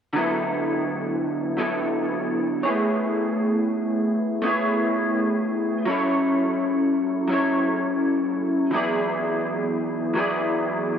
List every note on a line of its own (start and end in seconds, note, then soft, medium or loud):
0.13 1.56 D3 medium
0.13 1.57 F#3 medium
0.13 1.58 B3 medium
0.18 1.59 E4 medium
0.18 1.59 A4 medium
1.57 2.65 D3 medium
1.57 2.65 F#3 medium
1.57 2.66 B3 medium
1.57 2.66 E4 medium
1.57 2.65 A4 medium
2.63 4.44 E4 medium
2.63 4.44 G#4 medium
2.63 4.46 C#5 medium
2.68 4.41 A3 soft
2.68 4.42 B3 medium
4.42 5.85 A3 medium
4.42 5.87 B3 medium
4.42 5.88 E4 medium
4.46 5.88 G#4 medium
4.46 5.91 C#5 medium
5.86 7.27 F#3 medium
5.86 7.28 C#4 medium
5.86 7.31 E4 medium
5.90 7.31 A4 medium
5.90 7.32 C#5 medium
7.28 8.72 F#3 medium
7.28 8.73 C#4 medium
7.28 8.74 E4 medium
7.32 8.74 A4 medium
7.32 8.74 C#5 medium
8.71 10.13 E3 medium
8.71 10.15 F#3 medium
8.71 10.16 B3 medium
8.71 10.17 E4 medium
8.75 10.17 G#4 medium
8.75 10.19 D5 medium
10.14 10.99 E3 medium
10.14 10.99 F#3 medium
10.14 10.99 B3 medium
10.14 10.99 E4 medium
10.18 10.99 G#4 medium
10.18 10.99 D5 medium